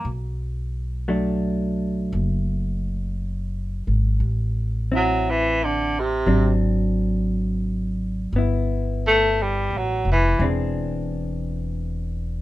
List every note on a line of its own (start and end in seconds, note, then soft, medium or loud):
0.05 2.08 B1 medium
1.08 4.20 F#3 soft
1.08 4.20 A3 soft
1.08 4.21 D4 soft
2.13 3.83 F#1 medium
3.87 4.18 G#1 medium
4.20 6.23 A1 medium
4.92 6.26 C4 soft
4.92 6.28 E4 soft
4.96 5.32 F#3 medium
5.30 5.66 E3 medium
5.65 6.01 D3 medium
6.00 6.54 C3 medium
6.26 8.29 G#1 medium
6.26 8.34 F#3 soft
6.26 8.34 C4 soft
6.26 8.34 D4 soft
8.33 9.67 G1 medium
8.33 10.41 B3 soft
8.38 10.42 E4 soft
9.07 9.44 A3 medium
9.42 9.79 G3 medium
9.71 10.03 A1 soft
9.78 10.09 F#3 medium
10.05 10.37 F1 medium
10.12 10.45 E3 medium
10.39 12.42 E1 medium
10.39 12.42 E3 soft
10.39 12.42 C4 soft
10.39 12.42 D4 soft
10.44 12.42 G#4 soft